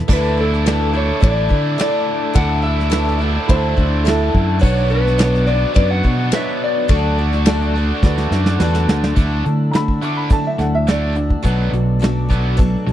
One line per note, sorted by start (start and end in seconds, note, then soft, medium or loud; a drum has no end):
0.08 1.10 D2 loud
0.08 0.37 D3 medium
0.08 0.37 A3 medium
0.08 0.37 D4 medium
0.08 0.46 E4 medium
0.08 0.36 E4 medium
0.08 0.46 A4 medium
0.08 4.58 A4 medium
0.08 0.46 D5 loud
0.08 4.59 E5 medium
0.08 2.34 D6 medium
0.08 kick loud
0.08 crash loud
0.13 0.40 B4 medium
0.37 0.65 A3 soft
0.37 0.66 D4 soft
0.37 0.66 E4 soft
0.37 0.97 A4 medium
0.54 snare soft
0.64 0.94 D3 medium
0.64 0.94 A3 medium
0.64 1.02 E4 medium
0.64 1.03 A4 medium
0.64 1.03 B4 medium
0.64 snare loud
0.64 ride bell medium
0.68 0.93 D4 medium
0.68 0.92 E4 medium
0.94 2.34 D3 medium
0.94 1.20 A3 soft
0.94 1.21 D4 medium
0.94 1.21 E4 medium
0.94 1.23 C#5 medium
1.20 1.48 A1 loud
1.20 1.50 D3 medium
1.20 1.50 A3 medium
1.20 1.49 D4 medium
1.20 1.59 E4 medium
1.20 1.48 E4 medium
1.20 1.59 A4 medium
1.20 1.59 D5 medium
1.20 1.80 D5 medium
1.20 kick loud
1.20 ride bell medium
1.49 1.76 D3 medium
1.49 1.77 A3 soft
1.49 1.78 D4 medium
1.49 1.78 E4 medium
1.49 kick medium
1.78 2.32 D3 medium
1.78 2.33 A3 medium
1.78 2.35 D4 medium
1.78 2.16 E4 medium
1.78 2.34 E4 medium
1.78 2.16 A4 medium
1.78 2.16 D5 medium
1.78 2.38 D5 loud
1.78 snare loud
1.78 ride bell medium
2.34 3.37 D2 loud
2.34 2.63 D3 medium
2.34 2.63 A3 medium
2.34 2.63 D4 medium
2.34 2.73 E4 medium
2.34 2.61 E4 medium
2.34 2.73 A4 medium
2.34 2.73 D5 medium
2.34 2.63 F#5 loud
2.34 4.59 E6 medium
2.34 kick loud
2.34 ride bell medium
2.62 2.90 A3 soft
2.62 2.91 D4 medium
2.62 2.90 E4 soft
2.62 3.45 E5 medium
2.80 snare soft
2.90 3.19 D3 medium
2.90 3.20 A3 medium
2.90 3.20 D4 medium
2.90 3.29 E4 medium
2.90 3.18 E4 medium
2.90 3.29 A4 medium
2.90 3.29 B4 medium
2.90 snare loud
2.90 ride bell medium
3.08 snare soft
3.19 3.49 A3 soft
3.19 3.49 D4 medium
3.19 3.48 E4 medium
3.23 4.62 D3 medium
3.47 3.75 D2 medium
3.47 3.77 D3 medium
3.47 3.78 A3 medium
3.47 3.86 E4 medium
3.47 3.86 A4 medium
3.47 4.04 C5 medium
3.47 3.86 B5 loud
3.47 kick loud
3.47 ride bell medium
3.51 3.76 D4 medium
3.51 3.76 E4 medium
3.77 4.28 D2 medium
3.77 4.05 A3 soft
3.77 4.05 D4 medium
3.77 4.05 E4 medium
3.77 kick medium
4.04 4.60 D3 medium
4.04 4.61 A3 medium
4.04 4.60 D4 medium
4.04 4.43 E4 medium
4.04 4.60 E4 medium
4.04 4.43 A4 medium
4.04 4.43 D5 loud
4.04 ride bell medium
4.08 4.47 E4 medium
4.08 4.49 A4 medium
4.08 snare loud
4.35 4.60 F#2 medium
4.35 kick medium
4.59 5.64 B1 loud
4.59 4.89 B2 medium
4.59 4.89 F#3 medium
4.59 4.90 B3 medium
4.59 4.90 D4 medium
4.59 6.86 D4 medium
4.59 5.00 D4 medium
4.59 4.89 F#4 medium
4.59 6.87 B4 medium
4.59 5.01 B4 medium
4.59 4.88 C#5 medium
4.59 4.91 C#5 loud
4.59 6.86 C#6 medium
4.59 kick loud
4.59 crash loud
4.63 5.01 C#5 loud
4.90 5.18 B3 soft
4.90 5.19 D4 soft
4.90 5.19 F#4 soft
4.90 5.49 B4 medium
4.90 5.19 C#5 medium
5.07 snare soft
5.18 5.47 B2 medium
5.18 5.48 F#3 medium
5.18 5.48 B3 medium
5.18 5.56 D4 medium
5.18 5.47 D4 medium
5.18 5.46 F#4 medium
5.18 5.56 B4 medium
5.18 5.57 C#5 medium
5.18 5.46 C#5 medium
5.18 snare loud
5.18 ride bell medium
5.35 snare soft
5.47 6.89 B2 medium
5.47 6.89 F#3 medium
5.47 5.73 B3 soft
5.47 5.74 D4 medium
5.47 5.75 F#4 medium
5.47 5.76 C#5 medium
5.47 5.74 D5 medium
5.74 6.01 F#2 loud
5.74 6.03 B3 medium
5.74 6.04 D4 medium
5.74 6.14 D4 medium
5.74 6.03 F#4 medium
5.74 6.14 B4 medium
5.74 6.14 C#5 medium
5.74 6.02 C#5 medium
5.74 5.90 D5 loud
5.74 kick loud
5.74 ride bell medium
5.91 6.30 F#5 loud
6.03 6.30 B2 medium
6.03 6.31 B3 soft
6.03 6.31 D4 soft
6.03 6.32 F#4 medium
6.03 6.32 C#5 medium
6.03 kick medium
6.32 6.88 B2 medium
6.32 6.88 F#3 medium
6.32 6.89 B3 medium
6.32 6.90 D4 medium
6.32 6.71 D4 medium
6.32 6.90 F#4 medium
6.32 6.71 B4 medium
6.32 6.89 C#5 medium
6.32 6.71 D5 medium
6.32 6.63 E5 loud
6.32 snare loud
6.32 ride bell medium
6.64 8.86 D5 medium
6.88 7.91 D2 loud
6.88 7.17 D3 medium
6.88 7.17 F#3 medium
6.88 7.18 A3 medium
6.88 7.18 D4 medium
6.88 7.27 F#4 medium
6.88 7.17 F#4 medium
6.88 7.27 A4 medium
6.88 9.15 A4 medium
6.88 7.17 D5 medium
6.88 7.27 D5 loud
6.88 9.15 F#5 medium
6.88 9.15 D6 medium
6.88 kick loud
6.88 ride bell medium
7.18 7.46 A3 soft
7.18 7.46 D4 soft
7.18 7.46 F#4 soft
7.18 7.46 D5 medium
7.33 snare soft
7.46 7.75 D3 medium
7.46 7.75 F#3 medium
7.46 7.75 A3 medium
7.46 7.75 D4 medium
7.46 7.84 F#4 medium
7.46 7.75 F#4 medium
7.46 7.84 A4 medium
7.46 7.84 D5 medium
7.46 7.74 D5 loud
7.46 snare loud
7.46 ride bell medium
7.61 snare soft
7.75 9.14 D3 medium
7.75 9.15 A3 medium
7.75 8.03 D4 medium
7.75 8.04 F#4 medium
7.75 8.04 D5 medium
7.79 8.02 A3 soft
8.03 8.28 D2 medium
8.03 8.31 A3 medium
8.03 8.32 D4 medium
8.03 8.41 F#4 medium
8.03 8.32 F#4 medium
8.03 8.41 A4 medium
8.03 8.41 B4 loud
8.03 8.31 D5 medium
8.03 kick loud
8.03 snare medium
8.18 snare medium
8.31 8.57 F#2 medium
8.31 8.60 A3 soft
8.31 8.60 D4 medium
8.31 8.60 F#4 medium
8.31 8.60 D5 medium
8.31 snare medium
8.46 snare medium
8.58 8.85 E2 medium
8.58 9.15 D3 medium
8.58 9.15 F#3 medium
8.58 9.15 A3 medium
8.58 9.16 D4 loud
8.58 8.97 F#4 medium
8.58 9.16 F#4 medium
8.58 8.97 A4 medium
8.58 8.97 B4 loud
8.58 snare medium
8.62 9.17 D5 loud
8.75 snare medium
8.88 9.14 D2 medium
8.88 snare loud
9.04 snare medium
9.16 9.42 D2 medium
9.16 9.73 D3 medium
9.16 9.73 F#3 medium
9.16 9.74 A3 medium
9.16 9.75 D4 medium
9.16 9.74 E4 medium
9.16 11.43 D5 medium
9.16 11.43 F#5 medium
9.16 11.43 E6 medium
9.16 kick loud
9.16 closed hi-hat medium
9.44 9.71 D3 medium
9.44 10.47 D3 medium
9.44 9.70 A3 medium
9.44 closed hi-hat medium
9.71 9.99 D3 medium
9.71 10.02 F#3 medium
9.71 10.02 A3 medium
9.71 10.02 D4 medium
9.71 9.75 A#5 medium
9.71 snare loud
9.71 closed hi-hat medium
9.76 10.01 E4 medium
9.76 10.02 B5 medium
9.88 kick medium
10.02 10.29 D3 medium
10.02 10.30 A3 soft
10.02 10.31 D4 soft
10.02 10.31 E4 soft
10.02 10.16 D6 medium
10.02 closed hi-hat medium
10.17 10.30 B5 medium
10.30 10.88 D3 medium
10.30 10.86 F#3 medium
10.30 10.86 A3 medium
10.30 10.87 D4 medium
10.30 10.88 E4 medium
10.30 10.45 A5 medium
10.30 kick loud
10.30 closed hi-hat medium
10.47 10.59 E5 medium
10.58 11.35 D2 medium
10.58 10.84 D3 medium
10.58 10.85 A3 medium
10.58 10.72 F#5 medium
10.58 snare soft
10.58 closed hi-hat medium
10.75 10.87 E5 medium
10.87 11.14 D3 medium
10.87 11.16 F#3 soft
10.87 11.15 A3 medium
10.87 11.14 D4 medium
10.87 11.12 E4 medium
10.87 12.56 D5 medium
10.87 snare loud
10.87 closed hi-hat medium
11.13 11.42 D3 medium
11.13 11.43 A3 soft
11.13 11.42 D4 soft
11.13 11.43 E4 soft
11.13 closed hi-hat medium
11.30 kick medium
11.43 11.70 B1 medium
11.43 12.01 B2 medium
11.43 11.98 F#3 medium
11.43 11.99 A3 medium
11.43 11.72 B3 medium
11.43 12.01 D4 medium
11.43 12.01 F#4 medium
11.43 12.93 B4 medium
11.43 12.93 A5 medium
11.43 12.93 D6 medium
11.43 kick medium
11.43 closed hi-hat medium
11.72 12.75 B1 medium
11.72 11.99 B2 medium
11.72 11.99 F#3 medium
11.72 closed hi-hat medium
11.99 12.28 B2 medium
11.99 12.29 F#3 medium
11.99 12.29 A3 medium
11.99 12.29 D4 medium
11.99 12.27 F#4 medium
11.99 closed hi-hat medium
12.04 snare loud
12.29 12.57 B2 medium
12.29 12.57 F#3 medium
12.29 12.56 A3 soft
12.29 12.57 B3 medium
12.29 12.56 D4 medium
12.29 12.58 F#4 medium
12.29 kick medium
12.29 closed hi-hat medium
12.57 12.93 B2 medium
12.57 12.93 F#3 medium
12.57 12.93 A3 medium
12.57 12.93 D4 medium
12.57 12.93 F#4 medium
12.57 kick loud
12.57 closed hi-hat medium
12.87 12.93 B1 medium
12.87 12.93 B2 medium
12.87 12.93 F#3 medium
12.87 closed hi-hat medium